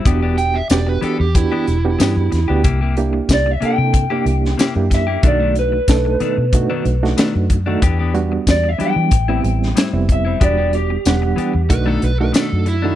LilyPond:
<<
  \new Staff \with { instrumentName = "Clean electric guitar" } { \time 4/4 \key e \minor \tempo 4 = 93 e''2 r2 | r4 d''16 e''16 g''2 e''8 | d''8 b'2. r8 | r4 d''16 e''16 g''2 e''8 |
d''8 g'4. r2 | }
  \new Staff \with { instrumentName = "Electric slide guitar" } { \time 4/4 \key e \minor r8 g''16 e''16 d''16 b'16 a'16 g'16 e'2 | r1 | r1 | r1 |
r2 b'16 a'16 b'16 b'16 a'8 e'8 | }
  \new Staff \with { instrumentName = "Reed electric piano" } { \time 4/4 \key e \minor <b d' fis' g'>8. r16 <b d' fis' g'>8. r16 <b d' fis' g'>8. <b d' fis' g'>8. r16 <b d' fis' g'>16 | r8 <bes d' e' g'>8. r16 <bes d' e' a'>8. <bes d' e' g'>8. r16 <bes d' e' g'>8. | <a d' dis' fis'>8. r16 <a d' dis' a'>8. r16 <a d' dis' fis'>8. <a d' dis' fis'>8. r16 <a d' dis' fis'>16 | r8 <g b d' fis'>8. r16 <fis g b d'>8 r16 <g b c' e'>8. r16 <g b c' e'>8. |
<g b d' fis'>8. r16 <g b d' fis''>8. r16 <a d' dis' fis'>8. <a d' dis' fis'>8. r16 <a d' dis' fis'>16 | }
  \new Staff \with { instrumentName = "Clean electric guitar" } { \time 4/4 \key e \minor <e b d' g'>16 <e b d' g'>16 r4 <e b d' g'>16 r8 <e b d' g'>16 r8 <e b d' g'>16 r8 <b d' g'>16 | <c bes e' g'>16 <c bes e' g'>16 r4 <c bes e' g'>16 r8 <c bes e' g'>16 r8 <c bes e' g'>16 r8 <bes e' g'>16 | <b, dis a d'>16 <b, dis a d'>16 r4 <b, dis a d'>16 r8 <b, dis a d'>16 r8 <b, dis a d'>16 r8 <dis a d'>16 | <e b d' g'>16 <e b d' g'>16 r4 <e b d' g'>16 r8 <a, g c' e'>16 r8 <a, g c' e'>16 r8 <g c' e'>16 |
<e b d' g'>16 <e b d' g'>16 r4 <e b d' g'>16 r8 <b, dis a d'>16 r8 <b, dis a d'>16 r8 <dis a d'>16 | }
  \new Staff \with { instrumentName = "Fingered electric bass" } { \clef bass \time 4/4 \key e \minor e,,4 e,,8 r16 e,8 r16 e,,8 g,16 fis,16 e,16 d,16 | c,4 c,8 r16 c8 r16 c,8 r16 fis,8. | b,,4 b,,8 r16 b,8 r16 b,,8 r16 fis,8. | e,4 e,8 r16 e16 a,,8 a,,8 r16 f,,8. |
e,,4 e,,8 r16 e,16 b,,8 b,,8 r16 fis,8. | }
  \new DrumStaff \with { instrumentName = "Drums" } \drummode { \time 4/4 <hh bd>8 hh8 <hh sn tamb>8 hh8 <hh bd>8 hh8 <hh sn tamb>8 <hh sn>8 | <hh bd>8 hh8 <hh bd sn tamb>8 hh8 <hh bd>8 hh16 sn16 <hh sn tamb>8 <hh bd sn>8 | <hh bd>8 hh8 <hh bd sn tamb>8 hh8 <hh bd>8 hh16 sn16 <hh sn tamb>8 <hh bd>8 | <hh bd>8 hh8 <hh bd sn tamb>8 hh8 <hh bd>8 hh16 sn16 <hh sn tamb>8 <hh bd>8 |
<hh bd>8 hh8 <hh sn tamb>8 hh8 <hh bd>8 hh8 <hh sn tamb>8 hh8 | }
>>